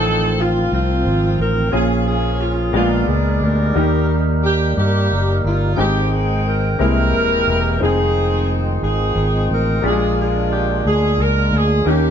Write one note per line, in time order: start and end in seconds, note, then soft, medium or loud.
0.00 0.67 A1 medium
0.00 0.67 A2 soft
0.00 1.68 D#3 medium
0.00 1.68 F3 medium
0.00 0.35 C4 medium
0.00 1.68 C4 soft
0.00 1.68 C4 medium
0.00 0.35 D#4 medium
0.00 1.69 D#4 soft
0.00 1.68 F4 medium
0.00 1.69 F4 medium
0.00 0.38 A4 medium
0.40 0.72 F4 medium
0.72 1.03 C2 medium
0.72 1.70 C4 medium
0.72 1.36 F4 medium
1.05 1.36 G#1 medium
1.39 1.70 A1 medium
1.39 1.73 A#4 medium
1.72 2.70 A#1 medium
1.72 2.70 A#2 medium
1.72 2.74 F3 medium
1.72 2.72 A#3 medium
1.72 2.73 A#3 medium
1.72 2.74 C#4 medium
1.72 2.70 C#4 medium
1.72 2.74 F4 soft
1.72 2.40 F4 medium
1.72 2.74 G#4 medium
1.72 2.05 G#4 medium
2.06 2.38 G#4 medium
2.41 2.73 F4 medium
2.73 3.05 A#1 medium
2.73 3.71 A#2 medium
2.73 3.75 G#3 medium
2.73 3.72 G#3 medium
2.73 3.73 A#3 medium
2.73 3.75 B3 medium
2.73 3.72 D4 medium
2.73 3.06 F4 medium
2.73 3.72 A#4 medium
2.73 3.75 D5 medium
3.08 3.39 C#2 medium
3.08 3.41 G#4 medium
3.41 3.72 D2 medium
3.41 4.27 D#4 medium
3.41 4.27 G4 medium
3.41 4.16 A#4 medium
3.73 4.73 D#2 medium
3.73 4.72 D#3 medium
3.73 5.73 G3 medium
3.73 5.73 A#3 medium
3.73 5.73 A#3 soft
3.73 5.73 D#4 medium
3.73 5.74 D#4 medium
3.73 5.74 G4 medium
3.73 5.73 A#4 medium
4.44 4.75 G4 medium
4.77 5.08 G2 medium
4.77 5.75 A#3 medium
4.77 5.75 D#4 medium
4.77 5.40 G4 medium
5.11 5.42 F#1 medium
5.44 5.75 G1 medium
5.44 5.78 F4 medium
5.76 6.75 G#1 medium
5.76 6.75 G#2 medium
5.76 6.78 D#3 medium
5.76 6.78 G#3 medium
5.76 6.79 G#3 medium
5.76 5.83 A#3 soft
5.76 6.78 C4 soft
5.76 6.75 C4 medium
5.76 6.79 D#4 soft
5.76 6.76 D#4 medium
5.76 6.09 G4 medium
5.76 6.78 G5 medium
5.76 6.79 G5 medium
5.83 6.78 C4 medium
6.12 6.46 G#4 medium
6.46 6.80 A#4 medium
6.79 7.14 C2 medium
6.79 7.77 C3 medium
6.79 7.81 E3 medium
6.79 7.79 G#3 medium
6.79 7.81 G#3 medium
6.79 7.80 A#3 medium
6.79 7.81 A#3 medium
6.79 7.78 C4 medium
6.79 7.79 C4 soft
6.79 7.81 E4 soft
6.79 7.77 E4 medium
6.79 7.77 G4 medium
6.79 7.77 A#4 medium
7.14 7.45 D#1 medium
7.48 7.78 E1 medium
7.80 8.79 F1 medium
7.80 9.79 D#3 medium
7.80 9.79 G#3 medium
7.80 9.79 C4 medium
7.80 9.79 C4 soft
7.80 8.79 C4 medium
7.80 9.80 D#4 soft
7.80 8.79 D#4 medium
7.80 9.79 F4 medium
7.80 9.80 F4 soft
7.80 9.80 G#4 medium
7.80 8.56 G#4 medium
8.83 9.13 G#1 medium
8.83 9.80 C4 medium
8.83 9.80 D#4 medium
8.83 9.46 G#4 medium
9.16 9.47 G#1 medium
9.50 9.81 A1 medium
9.50 9.84 A#4 medium
9.82 10.81 A#1 medium
9.82 10.81 A#2 medium
9.82 11.83 G#3 medium
9.82 11.82 A#3 medium
9.82 11.83 A#3 medium
9.82 11.83 D4 medium
9.82 10.82 D4 medium
9.82 9.90 E4 medium
9.82 11.83 F4 medium
9.82 9.91 G4 medium
9.82 10.18 G#4 medium
9.86 10.82 F4 medium
9.90 11.87 G#3 medium
9.90 11.86 F4 medium
10.20 10.50 G#4 medium
10.52 10.83 G4 medium
10.85 11.16 D2 medium
10.85 11.20 G#4 medium
11.18 11.50 C#2 medium
11.18 11.54 A#4 medium
11.52 11.83 D2 medium
11.56 11.88 G#4 medium
11.85 12.10 D#2 medium
11.85 12.10 D#3 medium
11.85 12.10 A#3 medium
11.85 12.10 C#4 soft
11.85 12.10 C#4 medium
11.85 12.10 D#4 medium
11.85 12.10 G4 medium